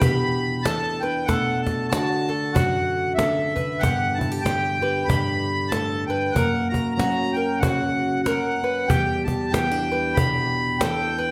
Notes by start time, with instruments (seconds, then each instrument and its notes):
Already playing: steel-string acoustic guitar E2 E3 G3 D4 G4
0.00 steel-string acoustic guitar B2, mandolin G4, accordion B5, cajon bass
0.21 cajon slap
0.63 steel-string acoustic guitar E3, mandolin A4, accordion A5, cajon slap
1.00 steel-string acoustic guitar D4, mandolin B4, accordion G5, cajon slap
1.25 steel-string acoustic guitar B2, mandolin A4, accordion F#5, cajon bass, cajon slap
1.30 steel-string acoustic guitar A3
1.62 accordion A5
1.67 steel-string acoustic guitar F#4, cajon bass, cajon slap
1.88 steel-string acoustic guitar D3, mandolin F#4, accordion A5
1.92 steel-string acoustic guitar D4, cajon slap
2.29 steel-string acoustic guitar F#4, mandolin A4
2.53 steel-string acoustic guitar F#2, mandolin F#4, accordion F#5, cajon bass
2.75 cajon slap
3.15 steel-string acoustic guitar D3, mandolin A4, accordion E5, cajon slap
3.38 cajon slap
3.56 steel-string acoustic guitar D4, mandolin B4, cajon bass
3.79 steel-string acoustic guitar G2 B3, mandolin G4, accordion F#5
3.83 cajon bass
4.15 accordion A5
4.19 steel-string acoustic guitar E4, cajon bass
4.32 steel-string acoustic guitar G4
4.41 steel-string acoustic guitar D3, accordion G5
4.45 steel-string acoustic guitar D4, mandolin G4, cajon slap
4.81 steel-string acoustic guitar G4, mandolin B4
5.05 steel-string acoustic guitar G2, mandolin G4, accordion B5
5.10 cajon bass
5.28 cajon slap
5.68 steel-string acoustic guitar A2, accordion A5, cajon slap
5.72 mandolin A4
6.07 steel-string acoustic guitar G2, mandolin B4, accordion G5, cajon slap
6.32 steel-string acoustic guitar F#2 A#3, mandolin A#4, accordion F#5
6.36 cajon bass
6.69 steel-string acoustic guitar F#4, accordion A#5
6.74 cajon bass
6.95 steel-string acoustic guitar F#3 C#4, accordion A#5
6.99 mandolin F#4, cajon slap
7.33 mandolin A#4, accordion G5
7.60 steel-string acoustic guitar C#3, mandolin F#4, accordion F#5, cajon bass
7.82 cajon slap
8.23 steel-string acoustic guitar F#3, mandolin A#4, accordion F#5, cajon slap
8.63 steel-string acoustic guitar C#4, mandolin B4, cajon slap
8.87 steel-string acoustic guitar E2 G3, mandolin G4, accordion G5, cajon bass
9.24 steel-string acoustic guitar G4, accordion A5, cajon bass
9.50 steel-string acoustic guitar E3 B3, mandolin G4, accordion G5, cajon slap
9.71 steel-string acoustic guitar D4
9.92 steel-string acoustic guitar G4, mandolin B4
10.14 steel-string acoustic guitar B2, mandolin G4, accordion B5, cajon bass
10.36 cajon slap
10.79 steel-string acoustic guitar E3, mandolin A4, accordion G5, cajon slap
11.18 steel-string acoustic guitar D4, mandolin B4, cajon slap